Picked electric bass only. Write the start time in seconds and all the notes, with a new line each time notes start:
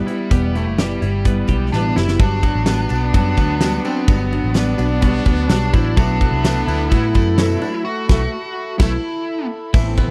0.31 E1
0.66 F#1
1.02 G1
1.49 B1
1.73 A1
1.97 F#1
2.19 G1
2.55 A1
2.91 B1
3.14 F#2
3.38 D2
4.08 G1
4.44 A1
4.79 B1
5.26 D2
5.50 B1
5.74 A1
5.97 B1
6.31 C2
6.67 D2
6.92 A2
7.15 F#2
8.10 B1
8.80 B1
9.74 A1